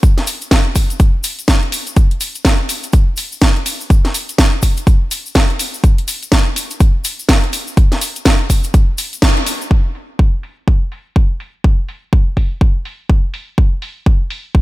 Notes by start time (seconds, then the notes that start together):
0.03 kick, closed hi-hat, shaker
0.18 snare, closed hi-hat
0.27 open hi-hat, shaker
0.41 closed hi-hat, shaker
0.51 kick, snare, closed hi-hat, shaker
0.75 kick, open hi-hat, shaker
0.90 closed hi-hat, shaker
0.99 kick, closed hi-hat, shaker
1.24 open hi-hat, shaker
1.39 closed hi-hat, shaker
1.48 kick, snare, closed hi-hat, shaker
1.63 closed hi-hat
1.72 open hi-hat, shaker
1.87 closed hi-hat, shaker
1.96 kick, closed hi-hat, shaker
2.11 closed hi-hat
2.21 open hi-hat, shaker
2.35 closed hi-hat, shaker
2.45 kick, snare, closed hi-hat, shaker
2.69 open hi-hat, shaker
2.83 closed hi-hat, shaker
2.93 kick, closed hi-hat, shaker
3.17 open hi-hat, shaker
3.32 shaker
3.41 kick, snare, closed hi-hat, shaker
3.57 closed hi-hat
3.66 open hi-hat, shaker
3.81 shaker
3.90 kick, closed hi-hat, shaker
4.05 snare, closed hi-hat
4.14 open hi-hat, shaker
4.29 closed hi-hat, shaker
4.38 kick, snare, closed hi-hat, shaker
4.62 kick, open hi-hat, shaker
4.77 closed hi-hat, shaker
4.87 kick, closed hi-hat, shaker
5.11 open hi-hat, shaker
5.26 shaker
5.35 kick, snare, closed hi-hat, shaker
5.50 closed hi-hat
5.59 open hi-hat, shaker
5.74 shaker
5.84 kick, closed hi-hat, shaker
5.98 closed hi-hat
6.08 open hi-hat, shaker
6.23 closed hi-hat, shaker
6.32 kick, snare, closed hi-hat, shaker
6.56 open hi-hat, shaker
6.70 closed hi-hat, shaker
6.80 kick, closed hi-hat, shaker
7.04 open hi-hat, shaker
7.19 shaker
7.29 kick, snare, closed hi-hat, shaker
7.44 closed hi-hat
7.53 open hi-hat, shaker
7.67 shaker
7.77 kick, closed hi-hat, shaker
7.92 snare, closed hi-hat
8.01 open hi-hat, shaker
8.16 closed hi-hat, shaker
8.25 kick, snare, closed hi-hat, shaker
8.50 kick, open hi-hat, shaker
8.64 closed hi-hat, shaker
8.74 kick, closed hi-hat, shaker
8.98 open hi-hat, shaker
9.13 closed hi-hat, shaker
9.22 kick, snare, closed hi-hat, shaker
9.37 closed hi-hat
9.47 open hi-hat, shaker
9.61 shaker
9.71 kick
9.95 open hi-hat
10.19 kick
10.43 open hi-hat
10.68 kick
10.92 open hi-hat
11.16 kick
11.40 open hi-hat
11.64 kick
11.88 open hi-hat
12.13 kick
12.37 kick, open hi-hat
12.61 kick
12.85 open hi-hat
13.10 kick
13.34 open hi-hat
13.58 kick
13.82 open hi-hat
14.06 kick
14.30 open hi-hat
14.55 kick